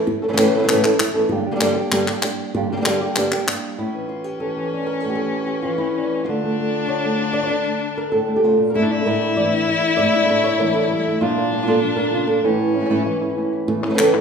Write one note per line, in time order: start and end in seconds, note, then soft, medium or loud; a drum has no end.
0.07 muted nylon-string guitar stroke medium
0.22 0.27 C#3 soft
0.22 0.26 E3 soft
0.22 0.26 A3 soft
0.22 0.24 C#4 soft
0.22 0.24 A4 medium
0.28 0.32 C#3 medium
0.28 0.32 E3 soft
0.28 0.32 E3 medium
0.28 0.32 A3 soft
0.28 0.32 A3 medium
0.28 0.33 C#4 medium
0.28 0.33 C#4 soft
0.28 0.33 E4 soft
0.28 0.33 A4 medium
0.33 0.36 C#3 medium
0.33 0.37 E3 soft
0.33 0.37 E3 medium
0.33 0.37 A3 medium
0.33 0.37 C#4 soft
0.33 0.37 C#4 medium
0.33 0.38 E4 medium
0.33 0.37 A4 medium
0.37 0.66 A2 medium
0.37 0.67 A2 medium
0.37 0.53 C#3 medium
0.37 0.68 E3 medium
0.37 0.54 E3 medium
0.37 0.68 A3 medium
0.37 0.54 A3 medium
0.37 0.54 C#4 medium
0.37 0.68 C#4 medium
0.37 0.69 E4 medium
0.37 0.54 A4 medium
0.37 clap medium
0.54 0.58 C#3 soft
0.54 0.58 E3 soft
0.54 0.58 A3 medium
0.54 0.58 C#4 medium
0.54 0.59 A4 medium
0.59 0.62 C#3 medium
0.59 0.62 E3 medium
0.59 0.63 A3 medium
0.59 0.63 C#4 medium
0.59 0.63 A4 medium
0.63 0.67 C#3 medium
0.63 0.67 E3 medium
0.63 0.67 A3 medium
0.63 0.67 C#4 medium
0.63 0.68 A4 medium
0.68 0.83 A2 medium
0.68 0.83 C#3 medium
0.68 0.83 E3 medium
0.68 0.84 E3 medium
0.68 0.83 A3 medium
0.68 0.84 A3 medium
0.68 0.83 C#4 medium
0.68 0.82 E4 medium
0.68 0.83 A4 medium
0.68 clap medium
0.84 0.98 E3 soft
0.84 0.99 A3 medium
0.84 0.99 A3 soft
0.84 0.99 C#4 medium
0.84 0.99 C#4 soft
0.84 0.99 E4 soft
0.84 0.99 A4 medium
0.84 clap medium
0.99 muted nylon-string guitar stroke medium
0.99 clap medium
1.14 1.31 E3 soft
1.14 1.30 A3 soft
1.14 1.31 A3 soft
1.14 1.30 C#4 medium
1.14 1.31 C#4 soft
1.14 1.30 E4 soft
1.14 1.30 A4 medium
1.29 1.46 G2 medium
1.29 1.46 D3 medium
1.29 1.46 G3 medium
1.29 1.46 A#3 medium
1.29 1.46 D4 medium
1.29 1.45 G4 medium
1.29 muted nylon-string guitar stroke medium
1.46 1.60 G3 soft
1.46 1.61 A#3 soft
1.46 1.61 D4 soft
1.46 1.61 G4 soft
1.52 1.55 D3 medium
1.52 1.55 G3 soft
1.52 1.55 A#3 medium
1.52 1.55 D4 medium
1.52 1.56 G4 medium
1.56 1.60 D3 medium
1.56 1.60 G3 medium
1.56 1.60 A#3 medium
1.56 1.60 D4 medium
1.56 1.60 G4 medium
1.60 1.76 G2 medium
1.60 1.76 D3 medium
1.60 1.76 G3 medium
1.60 1.76 G3 soft
1.60 1.76 A#3 medium
1.60 1.77 A#3 soft
1.60 1.75 D4 medium
1.60 1.76 D4 soft
1.60 1.75 G4 medium
1.60 1.76 G4 soft
1.60 clap medium
1.76 1.91 G3 soft
1.76 1.92 G3 soft
1.76 1.91 A#3 soft
1.76 1.92 A#3 soft
1.76 1.91 D4 soft
1.76 1.92 D4 soft
1.76 1.92 G4 medium
1.76 1.92 G4 soft
1.91 2.07 G2 medium
1.91 2.07 D3 medium
1.91 2.07 G3 medium
1.91 2.08 A#3 medium
1.91 2.07 D4 medium
1.91 2.06 G4 medium
1.91 muted nylon-string guitar stroke medium
1.91 clap medium
2.07 2.23 G3 soft
2.07 2.24 G3 soft
2.07 2.23 A#3 soft
2.07 2.23 D4 medium
2.07 2.23 D4 soft
2.07 2.23 G4 medium
2.07 2.22 G4 soft
2.07 clap medium
2.22 2.54 G3 soft
2.22 2.55 A#3 soft
2.22 2.54 D4 soft
2.22 2.54 G4 soft
2.22 muted nylon-string guitar stroke medium
2.22 clap medium
2.55 2.70 G2 medium
2.55 2.70 D3 medium
2.55 2.70 G3 medium
2.55 2.69 A#3 medium
2.55 2.68 D4 medium
2.55 2.68 G4 medium
2.55 muted nylon-string guitar stroke medium
2.69 2.75 D3 soft
2.69 2.84 G3 soft
2.69 2.76 G3 medium
2.69 2.84 A#3 soft
2.69 2.76 A#3 medium
2.69 2.85 D4 soft
2.69 2.76 D4 medium
2.69 2.85 G4 soft
2.69 2.76 G4 medium
2.77 2.80 D3 medium
2.77 2.81 G3 medium
2.77 2.80 A#3 medium
2.77 2.81 D4 medium
2.77 2.81 G4 medium
2.81 2.85 D3 medium
2.81 2.85 G3 medium
2.81 3.00 G3 soft
2.81 2.85 A#3 medium
2.81 2.85 D4 medium
2.81 2.86 G4 medium
2.86 3.01 G2 medium
2.86 3.01 D3 medium
2.86 3.01 G3 medium
2.86 3.01 A#3 soft
2.86 3.01 A#3 medium
2.86 2.99 D4 soft
2.86 3.01 D4 medium
2.86 2.99 G4 soft
2.86 3.00 G4 medium
2.86 clap medium
3.00 3.16 G3 soft
3.00 3.16 A#3 soft
3.00 3.17 A#3 soft
3.00 3.16 D4 soft
3.00 3.17 D4 medium
3.00 3.16 G4 soft
3.00 3.16 G4 medium
3.16 3.32 G2 medium
3.16 3.32 D3 medium
3.16 3.32 G3 medium
3.16 3.33 A#3 medium
3.16 3.32 D4 medium
3.16 3.31 G4 medium
3.16 muted nylon-string guitar stroke soft
3.16 clap medium
3.32 3.48 G3 soft
3.32 3.47 G3 soft
3.32 3.48 A#3 soft
3.32 3.47 A#3 soft
3.32 3.47 D4 soft
3.32 3.46 G4 soft
3.32 3.48 G4 medium
3.32 clap medium
3.48 3.79 G3 soft
3.48 3.79 A#3 soft
3.48 3.79 D4 soft
3.48 3.78 G4 soft
3.48 muted nylon-string guitar stroke medium
3.48 clap medium
3.79 5.01 A2 medium
3.79 6.28 C#4 medium
3.79 4.08 E4 medium
3.94 4.42 E3 medium
4.09 4.24 F4 medium
4.24 4.72 G4 medium
4.40 4.57 E3 medium
4.40 4.86 A4 medium
4.57 5.21 E3 medium
4.74 5.24 D4 soft
4.87 5.00 A#4 medium
5.00 6.26 A2 medium
5.00 5.14 A4 medium
5.10 5.45 G4 medium
5.15 5.80 A4 medium
5.21 5.65 E3 soft
5.47 5.62 G4 medium
5.62 5.81 E3 medium
5.62 5.78 F4 medium
5.78 6.29 E3 medium
5.78 6.26 E4 medium
5.98 6.24 D4 soft
6.25 6.89 D3 medium
6.25 8.60 D4 loud
6.25 7.19 F4 medium
6.29 6.43 A3 soft
6.44 6.60 A3 medium
6.60 7.04 A3 soft
6.88 7.50 D3 medium
6.88 7.33 C#5 medium
7.04 7.66 A3 medium
7.21 7.50 F4 soft
7.33 7.42 D5 medium
7.43 7.47 C#5 medium
7.43 7.97 D5 medium
7.51 8.43 D3 medium
7.67 8.28 A3 soft
7.97 8.11 A#4 medium
8.12 8.59 A2 medium
8.12 8.67 A4 medium
8.28 8.75 A3 medium
8.36 8.44 G4 medium
8.43 8.60 C#3 medium
8.43 8.74 F4 medium
8.59 8.75 A#2 medium
8.70 8.76 A#4 medium
8.74 9.97 A3 medium
8.74 8.90 D4 soft
8.74 8.84 E4 medium
8.74 9.68 E4 soft
8.74 9.05 A4 medium
8.74 muted nylon-string guitar stroke medium
8.83 8.92 D4 medium
8.90 8.96 D3 soft
8.90 8.96 A3 soft
8.90 9.53 D4 medium
8.90 8.94 D4 soft
8.90 11.23 E4 loud
8.90 8.93 E4 soft
8.90 8.97 E4 soft
8.97 9.00 D3 soft
8.97 9.00 A3 soft
8.97 9.01 D4 medium
8.97 9.01 E4 soft
9.01 9.05 D3 soft
9.01 9.05 A3 soft
9.01 9.06 D4 medium
9.01 9.06 E4 medium
9.06 9.37 A2 medium
9.06 9.37 D3 medium
9.06 9.37 A3 medium
9.06 9.37 D4 medium
9.06 9.37 E4 medium
9.06 9.22 A#4 medium
9.21 9.36 C#5 medium
9.36 9.67 A2 medium
9.36 9.67 D3 medium
9.36 9.97 E3 medium
9.36 9.67 A3 medium
9.36 9.68 D4 medium
9.36 9.68 E4 medium
9.36 9.81 D5 medium
9.53 10.15 D4 medium
9.68 9.98 E4 soft
9.68 muted nylon-string guitar stroke soft
9.81 9.99 A3 soft
9.81 9.99 D4 soft
9.81 9.98 E4 soft
9.81 9.96 E5 medium
9.97 11.07 A3 medium
9.97 10.44 D5 loud
9.97 muted nylon-string guitar stroke medium
10.14 10.19 A3 soft
10.14 10.20 D4 soft
10.14 10.75 D4 medium
10.14 10.20 E4 soft
10.20 10.24 D3 soft
10.20 10.24 A3 soft
10.20 10.24 D4 soft
10.20 10.25 E4 soft
10.25 10.28 D3 soft
10.25 10.29 A3 medium
10.25 10.29 D4 medium
10.25 10.29 E4 medium
10.29 10.59 A2 medium
10.29 10.59 D3 medium
10.29 10.59 A3 medium
10.29 10.60 D4 medium
10.29 10.60 E4 medium
10.29 11.21 E4 soft
10.44 10.91 C#5 medium
10.59 10.89 A2 medium
10.59 10.90 D3 medium
10.59 11.21 E3 medium
10.59 10.90 A3 medium
10.59 10.90 D4 medium
10.59 10.90 E4 medium
10.59 10.74 A#4 medium
10.74 10.92 D4 medium
10.74 11.21 A4 medium
10.91 11.07 G3 medium
10.91 muted nylon-string guitar stroke medium
11.07 11.23 A3 medium
11.07 11.21 A3 soft
11.07 11.21 D4 soft
11.07 11.22 E4 soft
11.21 11.52 A#2 medium
11.21 12.29 A#2 medium
11.21 11.52 F3 medium
11.21 11.52 A#3 medium
11.21 12.47 D4 medium
11.21 11.52 D4 medium
11.21 11.67 F4 loud
11.21 11.50 F4 medium
11.37 11.97 A#3 medium
11.52 11.56 F3 soft
11.52 11.57 A#3 soft
11.52 11.55 D4 soft
11.52 11.54 F4 soft
11.52 11.57 F4 soft
11.58 11.61 F3 soft
11.58 11.61 A#3 medium
11.58 11.62 D4 medium
11.58 11.62 F4 medium
11.62 11.66 F3 medium
11.62 11.66 A#3 medium
11.62 11.66 D4 medium
11.62 11.67 F4 medium
11.67 11.81 A#2 medium
11.67 11.81 F3 medium
11.67 11.81 A#3 medium
11.67 11.81 D4 medium
11.67 11.81 F4 medium
11.67 12.26 A4 medium
11.82 12.13 F3 medium
11.82 muted nylon-string guitar stroke medium
11.96 12.43 A#3 medium
11.96 12.12 A#3 soft
11.96 12.13 D4 soft
11.96 12.13 F4 soft
11.96 12.44 A#4 medium
12.13 12.29 C#3 medium
12.13 12.43 F3 soft
12.13 12.44 A#3 soft
12.13 12.44 D4 soft
12.13 12.44 F4 medium
12.27 12.44 A#2 medium
12.27 13.51 A4 medium
12.43 12.74 A2 medium
12.43 13.66 A2 medium
12.43 12.74 E3 medium
12.43 12.59 E3 soft
12.43 12.75 A3 medium
12.43 12.74 C#4 medium
12.43 13.52 C#4 medium
12.43 12.75 C#4 soft
12.43 12.73 E4 medium
12.60 13.05 E3 medium
12.74 12.80 A3 soft
12.74 12.80 C#4 soft
12.74 12.90 C#4 soft
12.74 12.81 E4 soft
12.80 12.84 E3 soft
12.80 12.84 A3 soft
12.80 12.85 C#4 soft
12.80 12.85 E4 soft
12.85 12.89 E3 medium
12.85 12.89 A3 medium
12.85 12.90 C#4 medium
12.85 12.90 E4 medium
12.90 13.04 A2 medium
12.90 13.04 E3 medium
12.90 13.05 A3 medium
12.90 13.05 C#4 medium
12.90 13.37 C#4 soft
12.90 13.05 E4 medium
13.05 13.21 E3 medium
13.05 muted nylon-string guitar stroke soft
13.21 13.85 E3 medium
13.21 13.36 A3 soft
13.21 13.37 C#4 soft
13.21 13.36 E4 soft
13.37 13.66 E3 soft
13.37 13.67 A3 soft
13.37 13.66 C#4 soft
13.37 13.67 C#4 soft
13.37 13.67 E4 soft
13.53 13.66 E4 soft
13.67 13.82 A2 medium
13.67 13.82 E3 medium
13.67 13.83 A3 medium
13.67 13.82 C#4 medium
13.67 13.81 E4 medium
13.67 muted nylon-string guitar stroke medium
13.83 13.88 C#3 soft
13.83 13.89 E3 soft
13.83 13.97 A3 soft
13.83 13.89 A3 medium
13.83 13.97 C#4 soft
13.83 13.89 C#4 medium
13.83 13.97 E4 soft
13.83 13.89 A4 medium
13.90 13.93 C#3 medium
13.90 13.93 E3 medium
13.90 13.94 A3 medium
13.90 13.94 C#4 medium
13.90 13.94 A4 medium
13.94 13.98 C#3 medium
13.94 13.98 E3 medium
13.94 13.99 A3 medium
13.94 13.99 C#4 medium
13.94 13.99 A4 medium
13.94 muted nylon-string guitar stroke medium
13.99 14.13 A2 medium
13.99 14.13 C#3 medium
13.99 14.14 E3 medium
13.99 14.14 A3 medium
13.99 14.14 C#4 medium
13.99 14.13 A4 medium
13.99 clap medium
14.13 14.21 E3 soft
14.13 14.21 A3 soft
14.13 14.21 C#4 soft
14.13 14.21 C#4 medium
14.13 14.21 E4 soft
14.13 14.21 A4 medium
14.13 clap soft